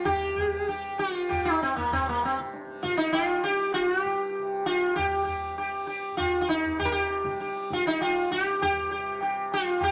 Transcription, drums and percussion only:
0.06 tabla na, tabla ge
0.37 tabla ge
0.69 tabla na
0.99 tabla te
1.31 tabla na, tabla ge
1.62 tabla te
1.77 tabla ge
1.92 tabla tin, tabla ge
2.23 tabla na
2.38 tabla ke
2.54 tabla te
2.68 tabla te
2.84 tabla ke
2.99 tabla te
3.15 tabla na
3.44 tabla te
3.75 tabla na
4.05 tabla ke
4.35 tabla na
4.67 tabla na
4.97 tabla na, tabla ge
5.27 tabla ge
5.58 tabla na
5.88 tabla te
6.19 tabla na, tabla ge
6.49 tabla te
6.65 tabla ge
6.80 tabla tin, tabla ge
7.09 tabla na
7.25 tabla ke
7.41 tabla te
7.56 tabla te
7.70 tabla ke
7.86 tabla te
8.01 tabla na
8.31 tabla ke
8.46 tabla te
8.61 tabla na, tabla ge
8.91 tabla te
9.21 tabla na
9.52 tabla na
9.81 tabla na, tabla ge

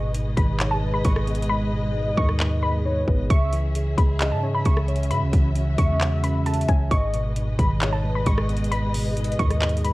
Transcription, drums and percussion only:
0.14 closed hi-hat
0.37 kick, closed hi-hat
0.60 clap, closed hi-hat
1.04 kick, closed hi-hat
1.16 cross-stick
1.27 closed hi-hat
1.35 closed hi-hat
1.42 closed hi-hat
2.18 kick
2.29 cross-stick
2.40 clap
3.08 kick
3.30 kick, closed hi-hat
3.53 closed hi-hat
3.75 closed hi-hat
3.98 kick, closed hi-hat
4.21 clap, closed hi-hat
4.65 kick, closed hi-hat
4.77 cross-stick
4.88 closed hi-hat
4.96 closed hi-hat
5.03 closed hi-hat
5.11 closed hi-hat
5.33 kick, closed hi-hat
5.56 closed hi-hat
5.78 kick, closed hi-hat
6.01 clap, closed hi-hat
6.24 closed hi-hat
6.46 closed hi-hat
6.54 closed hi-hat
6.61 closed hi-hat
6.68 kick, closed hi-hat
6.91 kick, closed hi-hat
7.14 closed hi-hat
7.36 closed hi-hat
7.59 kick, closed hi-hat
7.82 clap, closed hi-hat
8.26 kick, closed hi-hat
8.38 cross-stick
8.49 closed hi-hat
8.57 closed hi-hat
8.64 closed hi-hat
8.72 closed hi-hat
8.94 open hi-hat
9.17 closed hi-hat
9.24 closed hi-hat
9.32 closed hi-hat
9.39 kick, closed hi-hat
9.51 cross-stick, closed hi-hat
9.62 clap, closed hi-hat
9.69 closed hi-hat
9.77 closed hi-hat
9.85 closed hi-hat

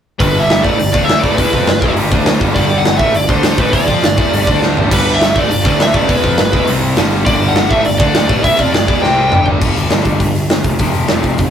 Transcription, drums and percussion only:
0.20 kick, open hi-hat
0.50 snare, open hi-hat
0.64 kick
0.80 open hi-hat
0.94 kick
1.09 snare, open hi-hat
1.24 kick
1.38 kick, open hi-hat
1.53 kick
1.67 snare, open hi-hat
1.82 kick
1.96 open hi-hat
2.12 kick
2.26 snare, open hi-hat
2.41 kick
2.56 kick, open hi-hat
2.85 snare, open hi-hat
2.99 kick
3.14 open hi-hat
3.29 kick
3.43 snare, open hi-hat
3.58 kick
3.73 kick, open hi-hat
3.88 kick
4.04 snare, open hi-hat
4.18 kick
4.33 open hi-hat
4.47 kick
4.62 snare
4.77 floor tom
4.91 kick, crash
5.21 snare, open hi-hat
5.36 kick
5.51 open hi-hat
5.65 kick
5.80 snare, open hi-hat
5.94 kick
6.09 kick, open hi-hat
6.24 kick
6.38 snare, open hi-hat
6.53 kick
6.67 open hi-hat
6.97 snare, open hi-hat
7.26 kick, open hi-hat
7.56 snare, open hi-hat
7.71 kick
7.85 open hi-hat
8.00 kick
8.15 snare, open hi-hat
8.29 kick
8.44 kick, open hi-hat
8.59 kick
8.74 snare, open hi-hat
8.88 kick
9.04 snare
9.32 mid tom
9.46 floor tom
9.62 kick, crash
9.76 open hi-hat
9.90 snare, open hi-hat
10.05 kick, open hi-hat
10.20 kick, open hi-hat
10.35 open hi-hat
10.50 snare, open hi-hat
10.64 kick, open hi-hat
10.79 kick, open hi-hat
10.94 open hi-hat
11.08 snare, open hi-hat
11.23 kick, open hi-hat
11.38 kick, open hi-hat

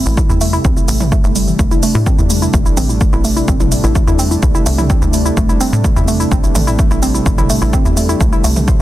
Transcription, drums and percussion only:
0.06 shaker
0.17 kick, shaker
0.30 shaker
0.41 open hi-hat, shaker
0.53 shaker
0.65 kick, shaker
0.77 shaker
0.88 open hi-hat, shaker
1.00 mid tom, shaker
1.12 kick, shaker
1.24 shaker
1.36 open hi-hat, shaker
1.48 shaker
1.59 kick, shaker
1.71 shaker
1.83 open hi-hat, shaker
1.95 shaker
2.06 kick, shaker
2.19 shaker
2.30 open hi-hat, shaker
2.42 shaker
2.54 kick, shaker
2.66 shaker
2.77 mid tom, open hi-hat, shaker
2.89 shaker
3.01 kick, shaker
3.13 shaker
3.25 open hi-hat, shaker
3.37 shaker
3.48 kick, shaker
3.60 mid tom, shaker
3.72 open hi-hat, shaker
3.84 shaker
3.95 kick, shaker
4.08 shaker
4.19 open hi-hat, shaker
4.31 shaker
4.43 kick, shaker
4.55 shaker
4.66 open hi-hat, shaker
4.78 mid tom, shaker
4.90 kick, shaker
5.02 shaker
5.13 open hi-hat, shaker
5.26 shaker
5.37 kick, shaker
5.49 shaker
5.61 open hi-hat, shaker
5.73 shaker
5.84 kick, shaker
5.96 shaker
6.08 open hi-hat, shaker
6.20 shaker
6.32 kick, shaker
6.44 shaker
6.55 mid tom, open hi-hat, shaker
6.67 shaker
6.79 kick, shaker
6.91 shaker
7.03 open hi-hat, shaker
7.15 shaker
7.26 kick, shaker
7.38 mid tom, shaker
7.50 open hi-hat, shaker
7.62 shaker
7.73 kick, shaker
7.85 shaker
7.97 open hi-hat, shaker
8.09 shaker
8.21 kick, shaker
8.33 shaker
8.44 open hi-hat, shaker
8.56 mid tom, shaker
8.68 kick, shaker

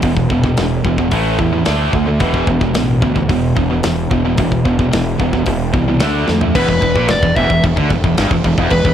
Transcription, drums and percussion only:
0.02 kick, open hi-hat
0.17 kick
0.30 kick
0.44 kick
0.57 snare, open hi-hat
0.85 kick
0.98 kick
1.11 kick, open hi-hat
1.39 kick
1.65 snare, open hi-hat
1.93 kick
2.20 kick, open hi-hat
2.34 kick
2.47 kick
2.61 kick
2.74 snare, open hi-hat
3.02 kick
3.16 kick
3.29 kick, open hi-hat
3.57 kick
3.83 snare, open hi-hat
4.11 kick
4.38 kick, open hi-hat
4.52 kick
4.65 kick
4.79 kick
4.93 snare, open hi-hat
5.20 kick
5.33 kick
5.46 kick, open hi-hat
5.74 kick
6.00 snare, open hi-hat
6.28 snare
6.41 floor tom
6.55 kick, crash
6.69 kick
6.82 kick, crash
6.96 kick
7.08 snare, crash
7.23 kick
7.36 kick, crash
7.50 kick
7.64 kick, crash
7.77 kick
7.90 kick, crash
8.04 kick
8.17 snare, crash
8.31 kick
8.44 kick, crash
8.58 kick
8.70 kick, crash
8.85 kick

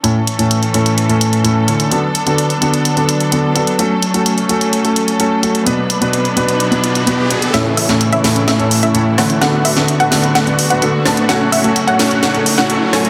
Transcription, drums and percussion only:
0.04 closed hi-hat
0.27 closed hi-hat
0.39 closed hi-hat
0.51 closed hi-hat
0.63 closed hi-hat
0.74 closed hi-hat
0.86 closed hi-hat
0.98 closed hi-hat
1.10 closed hi-hat
1.21 closed hi-hat
1.33 closed hi-hat
1.45 closed hi-hat
1.68 closed hi-hat
1.80 closed hi-hat
1.92 closed hi-hat
2.15 closed hi-hat
2.27 closed hi-hat
2.38 closed hi-hat
2.50 closed hi-hat
2.62 closed hi-hat
2.74 closed hi-hat
2.85 closed hi-hat
2.97 closed hi-hat
3.09 closed hi-hat
3.20 closed hi-hat
3.32 closed hi-hat
3.56 closed hi-hat
3.67 closed hi-hat
3.79 closed hi-hat
4.02 closed hi-hat
4.14 closed hi-hat
4.26 closed hi-hat
4.38 closed hi-hat
4.49 closed hi-hat
4.61 closed hi-hat
4.73 closed hi-hat
4.85 closed hi-hat
4.96 closed hi-hat
5.08 closed hi-hat
5.20 closed hi-hat
5.43 closed hi-hat
5.55 closed hi-hat
5.67 closed hi-hat
5.90 closed hi-hat
6.02 closed hi-hat
6.13 closed hi-hat
6.25 closed hi-hat
6.37 closed hi-hat
6.48 closed hi-hat
6.60 closed hi-hat
6.72 closed hi-hat
6.84 closed hi-hat
6.95 closed hi-hat
7.07 closed hi-hat
7.31 closed hi-hat
7.42 closed hi-hat
7.54 snare, closed hi-hat
7.77 open hi-hat
7.89 snare, closed hi-hat
8.01 closed hi-hat
8.13 closed hi-hat
8.24 snare, open hi-hat
8.36 closed hi-hat
8.48 snare, closed hi-hat
8.60 closed hi-hat
8.71 open hi-hat
8.83 closed hi-hat
8.95 closed hi-hat
9.18 cross-stick, snare, open hi-hat
9.30 closed hi-hat
9.42 snare, closed hi-hat
9.65 open hi-hat
9.77 snare, closed hi-hat
9.88 closed hi-hat
10.00 closed hi-hat
10.12 snare, open hi-hat
10.24 closed hi-hat
10.35 snare, closed hi-hat
10.47 closed hi-hat
10.59 open hi-hat
10.70 closed hi-hat
10.82 closed hi-hat
11.06 cross-stick, snare, open hi-hat
11.17 closed hi-hat
11.29 snare, closed hi-hat
11.52 open hi-hat
11.64 closed hi-hat
11.76 closed hi-hat
11.88 closed hi-hat
11.99 snare, open hi-hat
12.11 closed hi-hat
12.23 snare, closed hi-hat
12.35 closed hi-hat
12.46 open hi-hat
12.58 snare
12.70 closed hi-hat
12.93 cross-stick, snare, open hi-hat
13.05 closed hi-hat

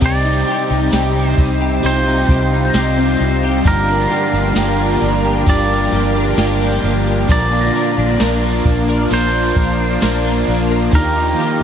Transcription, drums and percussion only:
0.02 kick, crash, ride
0.93 snare, ride, tambourine
1.38 kick
1.83 ride
2.29 kick
2.74 snare, ride, tambourine
3.65 kick, ride
4.56 snare, ride, tambourine
5.46 kick, ride
6.38 snare, ride, tambourine
7.29 kick, ride
8.20 snare, ride, tambourine
8.65 kick
9.11 ride
9.56 kick
10.02 snare, ride, tambourine
10.93 kick, ride

